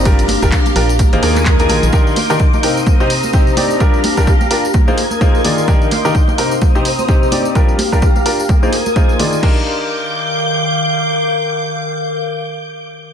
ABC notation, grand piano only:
X:1
M:4/4
L:1/16
Q:"Swing 16ths" 1/4=128
K:Eb
V:1 name="Grand piano"
[G,DFGB]2 z [G,DFGB] z2 [DFGB] z2 [B,EFAc] [B,EFAB]3 [B,EFAB] [E,EFAB]2 | [E,DEGB]2 z [E,DEGB] z2 [C,CEGB] z2 [C,CEGc] z2 [C,CEGc]2 [CEGd]2 | [G,DFGB]2 z [G,DFGB] z2 [DFGB] z2 [B,EFAc] z2 [B,EFAc]2 [E,EFAd]2 | [E,DEGB]2 z [E,DEGB] z2 [C,CEGB] z2 [C,CEGc] z2 [C,CEGc]2 [CEGd]2 |
[G,DFGB]2 z [G,DFGB] z2 [DFGB] z2 [B,EFAc] z2 [B,EFAc]2 [E,EFAd]2 | [DEGB]16- | [DEGB]16 |]